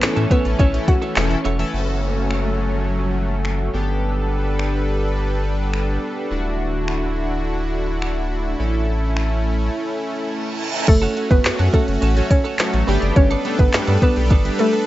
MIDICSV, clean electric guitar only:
0, 0, Header, 1, 3, 480
1, 0, Start_track
1, 0, Tempo, 571429
1, 1460, Time_signature, 4, 2, 24, 8
1, 12487, End_track
2, 0, Start_track
2, 0, Title_t, "Clean electric guitar"
2, 0, Program_c, 0, 27
2, 135, Note_on_c, 0, 69, 72
2, 144, Note_on_c, 0, 64, 61
2, 152, Note_on_c, 0, 61, 54
2, 243, Note_off_c, 0, 61, 0
2, 252, Note_off_c, 0, 64, 0
2, 253, Note_on_c, 0, 61, 88
2, 260, Note_off_c, 0, 69, 0
2, 262, Note_on_c, 0, 64, 84
2, 270, Note_on_c, 0, 69, 90
2, 367, Note_off_c, 0, 69, 0
2, 378, Note_off_c, 0, 64, 0
2, 418, Note_off_c, 0, 61, 0
2, 493, Note_on_c, 0, 61, 85
2, 502, Note_on_c, 0, 64, 94
2, 509, Note_on_c, 0, 69, 95
2, 606, Note_off_c, 0, 69, 0
2, 618, Note_off_c, 0, 64, 0
2, 658, Note_off_c, 0, 61, 0
2, 854, Note_on_c, 0, 69, 63
2, 863, Note_on_c, 0, 64, 59
2, 870, Note_on_c, 0, 61, 56
2, 983, Note_off_c, 0, 69, 0
2, 987, Note_off_c, 0, 64, 0
2, 991, Note_off_c, 0, 61, 0
2, 1213, Note_on_c, 0, 61, 87
2, 1221, Note_on_c, 0, 64, 89
2, 1228, Note_on_c, 0, 69, 95
2, 1323, Note_off_c, 0, 69, 0
2, 1333, Note_off_c, 0, 64, 0
2, 1378, Note_off_c, 0, 61, 0
2, 9254, Note_on_c, 0, 69, 95
2, 9263, Note_on_c, 0, 66, 81
2, 9269, Note_on_c, 0, 61, 80
2, 9364, Note_off_c, 0, 61, 0
2, 9372, Note_off_c, 0, 66, 0
2, 9374, Note_on_c, 0, 61, 73
2, 9378, Note_off_c, 0, 69, 0
2, 9382, Note_on_c, 0, 66, 75
2, 9388, Note_on_c, 0, 69, 76
2, 9487, Note_off_c, 0, 69, 0
2, 9497, Note_off_c, 0, 66, 0
2, 9503, Note_off_c, 0, 61, 0
2, 9736, Note_on_c, 0, 69, 68
2, 9745, Note_on_c, 0, 66, 66
2, 9752, Note_on_c, 0, 61, 54
2, 9844, Note_off_c, 0, 61, 0
2, 9853, Note_off_c, 0, 66, 0
2, 9854, Note_on_c, 0, 61, 87
2, 9860, Note_off_c, 0, 69, 0
2, 9863, Note_on_c, 0, 66, 99
2, 9870, Note_on_c, 0, 69, 91
2, 9965, Note_off_c, 0, 69, 0
2, 9976, Note_off_c, 0, 66, 0
2, 10018, Note_off_c, 0, 61, 0
2, 10092, Note_on_c, 0, 61, 85
2, 10101, Note_on_c, 0, 66, 92
2, 10108, Note_on_c, 0, 69, 97
2, 10203, Note_off_c, 0, 69, 0
2, 10213, Note_off_c, 0, 66, 0
2, 10257, Note_off_c, 0, 61, 0
2, 10452, Note_on_c, 0, 69, 68
2, 10460, Note_on_c, 0, 66, 59
2, 10467, Note_on_c, 0, 61, 56
2, 10582, Note_off_c, 0, 69, 0
2, 10586, Note_off_c, 0, 66, 0
2, 10590, Note_off_c, 0, 61, 0
2, 10813, Note_on_c, 0, 59, 86
2, 10821, Note_on_c, 0, 62, 100
2, 10828, Note_on_c, 0, 69, 101
2, 10924, Note_off_c, 0, 69, 0
2, 10936, Note_off_c, 0, 62, 0
2, 10978, Note_off_c, 0, 59, 0
2, 11177, Note_on_c, 0, 69, 85
2, 11185, Note_on_c, 0, 62, 79
2, 11192, Note_on_c, 0, 59, 71
2, 11285, Note_off_c, 0, 59, 0
2, 11293, Note_off_c, 0, 62, 0
2, 11295, Note_on_c, 0, 59, 63
2, 11300, Note_off_c, 0, 69, 0
2, 11303, Note_on_c, 0, 62, 71
2, 11310, Note_on_c, 0, 69, 75
2, 11407, Note_off_c, 0, 69, 0
2, 11418, Note_off_c, 0, 62, 0
2, 11424, Note_off_c, 0, 59, 0
2, 11655, Note_on_c, 0, 69, 67
2, 11662, Note_on_c, 0, 62, 57
2, 11670, Note_on_c, 0, 59, 57
2, 11766, Note_off_c, 0, 59, 0
2, 11775, Note_off_c, 0, 62, 0
2, 11776, Note_on_c, 0, 59, 85
2, 11781, Note_off_c, 0, 69, 0
2, 11785, Note_on_c, 0, 62, 97
2, 11791, Note_on_c, 0, 69, 99
2, 11888, Note_off_c, 0, 69, 0
2, 11899, Note_off_c, 0, 62, 0
2, 11939, Note_off_c, 0, 59, 0
2, 12015, Note_on_c, 0, 59, 90
2, 12025, Note_on_c, 0, 62, 93
2, 12031, Note_on_c, 0, 69, 98
2, 12127, Note_off_c, 0, 69, 0
2, 12139, Note_off_c, 0, 62, 0
2, 12179, Note_off_c, 0, 59, 0
2, 12374, Note_on_c, 0, 69, 67
2, 12383, Note_on_c, 0, 62, 62
2, 12389, Note_on_c, 0, 59, 48
2, 12487, Note_off_c, 0, 59, 0
2, 12487, Note_off_c, 0, 62, 0
2, 12487, Note_off_c, 0, 69, 0
2, 12487, End_track
3, 0, Start_track
3, 0, Title_t, "Muted clean electric guitar strokes"
3, 16, Note_on_c, 9, 29, 42
3, 100, Note_off_c, 9, 29, 0
3, 377, Note_on_c, 9, 29, 55
3, 461, Note_off_c, 9, 29, 0
3, 616, Note_on_c, 9, 29, 46
3, 700, Note_off_c, 9, 29, 0
3, 735, Note_on_c, 9, 29, 47
3, 819, Note_off_c, 9, 29, 0
3, 1094, Note_on_c, 9, 29, 42
3, 1178, Note_off_c, 9, 29, 0
3, 1333, Note_on_c, 9, 29, 56
3, 1417, Note_off_c, 9, 29, 0
3, 9135, Note_on_c, 9, 29, 45
3, 9219, Note_off_c, 9, 29, 0
3, 9497, Note_on_c, 9, 29, 57
3, 9581, Note_off_c, 9, 29, 0
3, 9616, Note_on_c, 9, 29, 44
3, 9700, Note_off_c, 9, 29, 0
3, 9975, Note_on_c, 9, 29, 57
3, 10059, Note_off_c, 9, 29, 0
3, 10213, Note_on_c, 9, 29, 49
3, 10297, Note_off_c, 9, 29, 0
3, 10334, Note_on_c, 9, 29, 42
3, 10418, Note_off_c, 9, 29, 0
3, 10695, Note_on_c, 9, 29, 51
3, 10779, Note_off_c, 9, 29, 0
3, 10934, Note_on_c, 9, 29, 48
3, 11018, Note_off_c, 9, 29, 0
3, 11056, Note_on_c, 9, 29, 42
3, 11140, Note_off_c, 9, 29, 0
3, 11417, Note_on_c, 9, 29, 56
3, 11501, Note_off_c, 9, 29, 0
3, 11536, Note_on_c, 9, 29, 49
3, 11620, Note_off_c, 9, 29, 0
3, 11898, Note_on_c, 9, 29, 59
3, 11982, Note_off_c, 9, 29, 0
3, 12137, Note_on_c, 9, 29, 54
3, 12221, Note_off_c, 9, 29, 0
3, 12255, Note_on_c, 9, 29, 51
3, 12339, Note_off_c, 9, 29, 0
3, 12487, End_track
0, 0, End_of_file